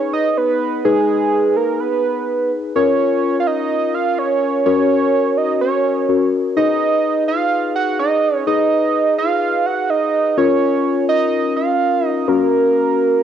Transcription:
Already playing: synth keys D#4 G#4 B4, analog synth lead C#5
0.14 analog synth lead D#5
0.37 analog synth lead B4
0.85 synth keys D#4 G#4 B4, analog synth lead G#4
1.56 analog synth lead A#4
1.80 analog synth lead B4
2.76 synth keys C#4 F4 A#4, analog synth lead C#5
3.40 analog synth lead F5
3.47 analog synth lead D#5
3.94 analog synth lead F5
4.18 analog synth lead C#5
4.66 synth keys C#4 F#4 A#4, analog synth lead C#5
5.37 analog synth lead D#5
5.61 analog synth lead C#5
6.09 synth keys C#4 F#4 A#4
6.56 synth keys D#4 G#4 B4, analog synth lead D#5
7.28 analog synth lead F5
7.76 analog synth lead F#5
7.99 analog synth lead D#5
8.47 synth keys D#4 G#4 B4, analog synth lead D#5
9.18 analog synth lead F5
9.66 analog synth lead F#5
9.90 analog synth lead D#5
10.37 synth keys C#4 F4 A#4, analog synth lead C#5
11.09 analog synth lead D#5
11.56 analog synth lead F5
12.06 analog synth lead D#5
12.28 synth keys C#4 F#4 A#4, analog synth lead A#4

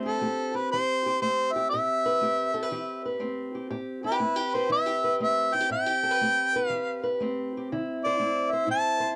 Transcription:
Already playing: steel-string acoustic guitar A2 A3 C4 C5
0.06 steel-string acoustic guitar G4, harmonica A4
0.21 steel-string acoustic guitar A3 G4
0.54 steel-string acoustic guitar G4, harmonica B4
0.72 steel-string acoustic guitar E3 G4, harmonica C5
1.06 steel-string acoustic guitar G4
1.22 steel-string acoustic guitar A3 C4, harmonica C5
1.52 steel-string acoustic guitar G4, harmonica E5
1.70 steel-string acoustic guitar A2, harmonica E5
1.74 steel-string acoustic guitar G4
2.06 steel-string acoustic guitar B4
2.21 steel-string acoustic guitar A3 G4
2.54 steel-string acoustic guitar A4
2.63 steel-string acoustic guitar B4
2.71 steel-string acoustic guitar E3 G4
3.05 steel-string acoustic guitar B4
3.20 steel-string acoustic guitar A3 C4
3.55 steel-string acoustic guitar G4
3.70 steel-string acoustic guitar A2 G4
4.04 steel-string acoustic guitar E4, harmonica B4
4.12 steel-string acoustic guitar G4
4.20 steel-string acoustic guitar A3 E4
4.36 steel-string acoustic guitar G4
4.54 steel-string acoustic guitar B4, harmonica C5
4.69 steel-string acoustic guitar E3 E4, harmonica E5
4.86 steel-string acoustic guitar G4
5.04 steel-string acoustic guitar B4
5.20 steel-string acoustic guitar A3 C4, harmonica E5
5.54 steel-string acoustic guitar E4, harmonica G5
5.60 steel-string acoustic guitar G4
5.69 steel-string acoustic guitar A2 E4, harmonica G5
5.86 steel-string acoustic guitar G4
6.03 steel-string acoustic guitar A4
6.11 steel-string acoustic guitar B4
6.21 steel-string acoustic guitar A3 G4
6.56 steel-string acoustic guitar B4
6.68 steel-string acoustic guitar E3 G4, harmonica F5
7.03 steel-string acoustic guitar B4
7.20 steel-string acoustic guitar A3 C4
7.57 steel-string acoustic guitar G4
7.72 steel-string acoustic guitar D3 E4
8.04 steel-string acoustic guitar C5, harmonica D5
8.19 steel-string acoustic guitar A3 E4
8.52 steel-string acoustic guitar C5, harmonica E5
8.66 steel-string acoustic guitar A2 E4
8.71 harmonica A5
9.00 steel-string acoustic guitar C5

